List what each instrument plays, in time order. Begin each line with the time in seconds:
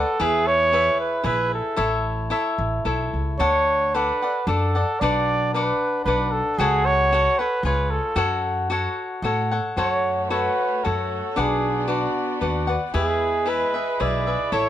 Already playing: cavaquinho B4 D5 F#5
0.00 trumpet A4
0.20 upright bass E2, cavaquinho E4 G#4 B4 E5, trumpet G#4
0.47 trumpet C#5
0.72 cavaquinho E4 G#4 B4 E5
1.00 trumpet B4
1.23 upright bass A#1, cavaquinho E4 G#4 B4 E5, trumpet B4
1.54 trumpet A4
1.76 upright bass A1, cavaquinho E4 A4 C#5 E5
2.30 cavaquinho E4 A4 C#5 E5
2.58 upright bass A1
2.85 upright bass B1, cavaquinho E4 A4 C#5 E5
3.13 upright bass C#2
3.39 upright bass D2, cavaquinho D4 A4 F#5, trumpet C#5
3.94 cavaquinho D4 A4 D5 F#5, trumpet B4
4.22 cavaquinho A4 D5 F#5
4.47 upright bass F#2, cavaquinho D4 A4 D5 F#5, trumpet A4
4.75 cavaquinho A4 D5 F#5
5.00 upright bass B1, cavaquinho D4 B4 D5 F#5, trumpet D5
5.54 cavaquinho D4 B4 D5 F#5, trumpet B4
6.04 upright bass B1, cavaquinho D4 B4 D5 F#5, trumpet B4
6.31 trumpet A4
6.58 upright bass C#2, cavaquinho F#4 A4 C#5 F#5, trumpet G#4
6.86 trumpet C#5
7.12 cavaquinho F#4 A4 C#5 F#5
7.39 cavaquinho A4 C#5 F#5, trumpet B4
7.63 upright bass C#2, cavaquinho F4 G#4 C#5 F5, trumpet B4
7.90 trumpet A4
8.16 upright bass F#2, cavaquinho F#4 A4 C#5 F#5
8.70 cavaquinho F#4 A4 C#5 F#5
9.22 upright bass A2, cavaquinho F#4 A4 C#5 F#5
9.51 cavaquinho A4 C#5 F#5
9.76 upright bass F#2, violin section A3 F#4 C#5, cavaquinho F#4 A4 C#5 F#5, trumpet C#5
10.24 trumpet C#5
10.29 cavaquinho F#4 A4 C#5 F#5, trumpet B4
10.84 upright bass F#2, cavaquinho F#4 A4 C#5 F#5, trumpet A4
11.36 upright bass B1, violin section B3 D5, cavaquinho D4 B4 D5 F#5, trumpet G#4
11.88 cavaquinho D4 B4 D5 F#5, trumpet F#4
12.41 upright bass D#2, cavaquinho D4 B4 D5 F#5, trumpet F#4
12.67 cavaquinho B4 D5 F#5
12.92 upright bass E2, violin section G#3 E4 B4, cavaquinho E4 G#4 B4 E5, trumpet G#4
13.46 cavaquinho E4 G#4 B4 E5, trumpet B4
13.74 cavaquinho G#4 B4 E5
14.00 upright bass B1, cavaquinho E4 G#4 B4 E5, trumpet D5
14.27 cavaquinho G#4 B4 E5
14.52 upright bass A1, violin section A3 C#5, cavaquinho E4 A4 C#5 E5, trumpet C#5